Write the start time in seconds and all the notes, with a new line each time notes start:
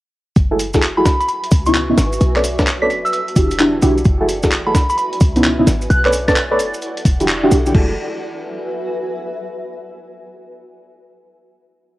0.36 F#1 F#4, kick, closed hi-hat, maracas
0.44 B4
0.51 E4 F#4 G#4 A4
0.59 open hi-hat, maracas
0.70 E5 G#5, maracas
0.74 E4 F#4 G#4 A4, kick, snare
0.82 clap, closed hi-hat, maracas
0.97 E4 F#4 G#4 A4 B5
1.05 C#2 B5, kick, snare, open hi-hat, maracas
1.20 B5, closed hi-hat, maracas
1.28 B5, closed hi-hat, maracas
1.44 closed hi-hat
1.51 C#2, kick, open hi-hat, maracas
1.66 B3 C#4 D#4 E4 C#6, closed hi-hat, maracas
1.75 clap, closed hi-hat, maracas
1.90 B3 C#4 D#4 E4
1.98 G#1, snare, open hi-hat, maracas
2.13 closed hi-hat, maracas
2.21 B1, closed hi-hat, maracas
2.36 A4 B4 C#5 D5, clap
2.44 open hi-hat, maracas
2.59 A4 B4 C#5 D5, kick, snare, maracas
2.67 clap, closed hi-hat, maracas
2.82 A4 B4 C#5 D5 B6
2.90 E1 E4 B6, open hi-hat, maracas
3.05 E6, closed hi-hat, maracas
3.12 A4 E6, closed hi-hat, maracas
3.28 closed hi-hat
3.36 E1 D4 E4 F#4 G4, kick, open hi-hat, maracas
3.51 closed hi-hat, maracas
3.59 D4 E4 F#4 G4, clap, closed hi-hat, maracas
3.82 B1 D4 E4 F#4 G4, open hi-hat, maracas
3.98 closed hi-hat, maracas
4.05 F#1 F#4, kick, closed hi-hat, maracas
4.18 E4 F#4 G#4 A4 B4 E5
4.29 open hi-hat, maracas
4.39 G#5, maracas
4.43 E4 F#4 G#4 A4, kick, snare
4.51 clap, closed hi-hat, maracas
4.67 E4 F#4 G#4 A4 B5
4.75 C#2 B5, kick, snare, open hi-hat, maracas
4.89 B5, closed hi-hat, maracas
4.98 B5, closed hi-hat, maracas
5.13 closed hi-hat
5.20 C#2, kick, open hi-hat, maracas
5.36 B3 C#4 D#4 E4, closed hi-hat, maracas
5.44 clap, closed hi-hat, maracas
5.59 B3 C#4 D#4 E4
5.67 G#1, snare, open hi-hat, maracas
5.81 closed hi-hat, maracas
5.90 B1 E4 F#6, closed hi-hat, maracas
6.00 D5
6.05 A4 B4 C#5 D5 F#6, clap
6.12 A4 F#5, open hi-hat, maracas
6.28 A4 B4 C#5 D5 A6, kick, snare, maracas
6.36 clap, closed hi-hat, maracas
6.51 A4 B4 C#5 D5
6.59 E1, open hi-hat, maracas
6.74 closed hi-hat, maracas
6.82 closed hi-hat, maracas
6.97 closed hi-hat
7.05 E1, kick, open hi-hat, maracas
7.20 D4 E4 F#4 G4, closed hi-hat, maracas
7.28 clap, closed hi-hat, maracas
7.44 D4 E4 F#4 G4
7.51 B1, open hi-hat, maracas
7.66 D4 E4 F#4 G4, closed hi-hat, maracas
7.75 F#1 E4 F#4 G#4 A4, kick, crash
7.84 B4
7.92 E5
7.97 G#5